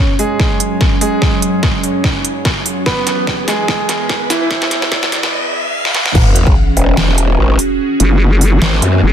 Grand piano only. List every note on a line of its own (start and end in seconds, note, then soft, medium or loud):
0.00 0.12 C#4 medium
0.00 0.12 C#5 medium
0.19 0.94 G#3 medium
0.19 0.94 G#4 medium
1.01 2.79 G#3 medium
1.01 2.79 G#4 medium
2.86 3.40 B3 medium
2.86 3.40 B4 loud
3.48 4.23 G#3 medium
3.48 4.23 G#4 medium
4.30 5.33 E3 medium
4.30 5.33 E4 loud